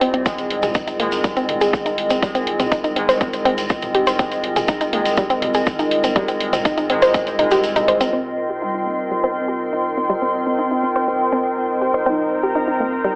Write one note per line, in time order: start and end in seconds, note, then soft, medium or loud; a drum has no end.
0.00 0.23 C2 medium
0.00 0.23 C3 medium
0.00 0.23 G3 medium
0.00 0.23 C4 medium
0.00 13.15 C4 medium
0.00 0.09 C4 loud
0.00 13.15 F4 medium
0.00 1.00 C5 medium
0.00 13.15 D#5 medium
0.00 open hi-hat medium
0.14 0.25 C4 medium
0.14 closed hi-hat soft
0.26 8.10 C2 medium
0.26 0.97 G#2 medium
0.26 0.97 D#3 medium
0.26 0.97 G#3 medium
0.26 0.31 C4 loud
0.26 kick loud
0.26 closed hi-hat medium
0.26 shaker medium
0.38 closed hi-hat soft
0.38 shaker soft
0.48 13.15 A#4 medium
0.48 open hi-hat loud
0.63 0.71 G#4 medium
0.63 closed hi-hat soft
0.63 mid tom medium
0.63 shaker medium
0.74 0.83 D#4 medium
0.74 kick loud
0.74 closed hi-hat medium
0.74 shaker medium
0.87 0.95 D#4 medium
0.87 closed hi-hat soft
0.87 shaker soft
0.99 2.20 G#2 medium
0.99 2.20 D#3 medium
0.99 2.20 G#3 loud
0.99 1.08 A#3 medium
0.99 open hi-hat medium
1.12 closed hi-hat soft
1.12 shaker medium
1.24 1.29 G3 loud
1.24 kick loud
1.24 closed hi-hat medium
1.24 shaker medium
1.36 1.48 C4 loud
1.36 closed hi-hat soft
1.36 shaker soft
1.49 mid tom medium
1.49 open hi-hat loud
1.61 1.69 G#4 medium
1.61 closed hi-hat soft
1.61 shaker medium
1.73 kick loud
1.73 closed hi-hat soft
1.73 shaker medium
1.86 1.94 D#4 medium
1.86 closed hi-hat soft
1.86 shaker soft
1.98 open hi-hat medium
2.10 2.18 C4 medium
2.10 closed hi-hat soft
2.10 shaker medium
2.22 2.93 G#2 medium
2.22 2.93 D#3 medium
2.22 2.27 G3 loud
2.22 2.93 G#3 medium
2.22 kick loud
2.22 closed hi-hat medium
2.22 shaker medium
2.35 2.43 C4 medium
2.35 closed hi-hat soft
2.35 shaker soft
2.47 open hi-hat loud
2.60 2.64 C4 medium
2.60 closed hi-hat soft
2.60 mid tom loud
2.60 shaker medium
2.72 2.80 D#4 medium
2.72 kick loud
2.72 closed hi-hat medium
2.72 shaker medium
2.84 2.92 D#4 medium
2.84 closed hi-hat soft
2.84 shaker soft
2.96 4.16 G#2 medium
2.96 4.16 D#3 medium
2.96 4.16 G#3 medium
2.96 3.05 C4 medium
2.96 open hi-hat medium
3.09 3.17 C5 loud
3.09 closed hi-hat soft
3.09 shaker medium
3.21 3.29 C4 medium
3.21 kick loud
3.21 closed hi-hat medium
3.21 shaker medium
3.33 closed hi-hat soft
3.33 shaker soft
3.45 3.50 C4 loud
3.45 open hi-hat loud
3.58 closed hi-hat soft
3.58 shaker medium
3.69 kick loud
3.69 closed hi-hat soft
3.69 shaker medium
3.81 closed hi-hat soft
3.81 mid tom medium
3.81 shaker soft
3.95 4.07 G4 medium
3.95 open hi-hat medium
4.07 4.15 C5 loud
4.07 closed hi-hat soft
4.07 shaker medium
4.19 4.90 G#2 medium
4.19 4.90 D#3 medium
4.19 4.90 G#3 medium
4.19 4.24 C4 loud
4.19 kick loud
4.19 closed hi-hat medium
4.19 shaker medium
4.32 closed hi-hat soft
4.32 shaker soft
4.44 open hi-hat medium
4.56 4.64 G#4 medium
4.56 closed hi-hat soft
4.56 mid tom loud
4.56 shaker medium
4.68 4.77 D#4 medium
4.68 kick loud
4.68 closed hi-hat medium
4.68 shaker medium
4.81 4.89 D#4 medium
4.81 closed hi-hat soft
4.81 shaker soft
4.93 6.13 G#2 medium
4.93 6.13 D#3 medium
4.93 6.13 G#3 loud
4.93 5.01 A#3 medium
4.93 open hi-hat medium
5.05 closed hi-hat soft
5.05 shaker medium
5.17 5.23 G3 loud
5.17 kick loud
5.17 closed hi-hat medium
5.17 shaker medium
5.30 5.42 C4 loud
5.30 closed hi-hat soft
5.30 shaker soft
5.42 mid tom medium
5.42 open hi-hat loud
5.54 5.63 G#4 medium
5.54 closed hi-hat soft
5.54 shaker medium
5.66 kick loud
5.66 closed hi-hat soft
5.66 shaker medium
5.79 5.87 D#4 medium
5.79 closed hi-hat soft
5.79 shaker soft
5.91 open hi-hat medium
6.04 6.12 C4 medium
6.04 closed hi-hat soft
6.04 shaker medium
6.16 6.87 G#2 medium
6.16 6.87 D#3 medium
6.16 6.21 G3 loud
6.16 6.87 G#3 medium
6.16 kick loud
6.16 closed hi-hat medium
6.16 shaker medium
6.28 6.36 C4 medium
6.28 closed hi-hat soft
6.28 shaker soft
6.40 open hi-hat loud
6.53 6.58 C4 medium
6.53 closed hi-hat soft
6.53 mid tom medium
6.53 shaker medium
6.65 6.73 D#4 medium
6.65 kick loud
6.65 closed hi-hat medium
6.65 shaker medium
6.78 6.86 D#4 medium
6.78 closed hi-hat soft
6.78 shaker soft
6.90 7.36 G#2 medium
6.90 7.36 D#3 medium
6.90 7.36 G#3 loud
6.90 6.98 C4 medium
6.90 open hi-hat medium
7.02 7.10 C5 loud
7.02 closed hi-hat soft
7.02 shaker medium
7.14 7.23 C4 medium
7.14 kick loud
7.14 closed hi-hat medium
7.14 shaker medium
7.27 closed hi-hat soft
7.27 shaker soft
7.39 8.10 G#2 medium
7.39 8.10 D#3 medium
7.39 8.10 G#3 medium
7.39 7.47 D#4 medium
7.39 mid tom medium
7.39 open hi-hat loud
7.51 7.63 G4 medium
7.51 closed hi-hat soft
7.51 shaker medium
7.63 closed hi-hat soft
7.63 shaker medium
7.76 7.84 D#4 medium
7.76 closed hi-hat soft
7.76 mid tom medium
7.76 shaker soft
7.88 7.96 C5 medium
7.88 open hi-hat medium
8.01 8.05 C4 medium
8.01 closed hi-hat soft
8.01 shaker medium
8.13 13.15 C2 medium
8.13 12.03 C3 medium
8.13 12.03 G3 medium
8.13 8.58 C4 loud
8.13 12.03 C4 medium
8.13 8.18 C4 loud
8.13 13.15 D#4 medium
8.13 13.15 C5 medium
8.13 13.15 G5 medium
8.13 12.02 C6 medium
8.50 8.58 G4 medium
8.62 9.26 G3 loud
8.62 8.70 D#4 medium
8.75 8.82 D#4 medium
8.87 8.95 A#3 medium
9.11 9.16 G3 loud
9.24 9.35 C4 loud
9.36 11.96 C4 loud
9.48 9.56 G4 medium
9.73 9.81 D#4 medium
9.97 10.05 C4 medium
10.10 10.14 G3 loud
10.22 10.30 C4 medium
10.47 10.51 C4 medium
10.59 10.67 D#4 medium
10.71 10.79 D#4 medium
10.83 10.91 C4 medium
10.96 11.04 C5 loud
11.08 11.16 C4 medium
11.32 11.37 C4 loud
11.82 11.93 G4 medium
11.94 12.02 C5 medium
12.06 13.15 C3 medium
12.06 13.15 G3 medium
12.06 12.11 C4 loud
12.06 13.15 C4 medium
12.06 12.51 D#4 loud
12.06 13.15 A#5 medium
12.43 12.51 G4 medium
12.55 13.15 C4 loud
12.55 12.64 D#4 medium
12.68 12.76 D#4 medium
12.80 12.88 A#3 medium
13.04 13.09 G3 loud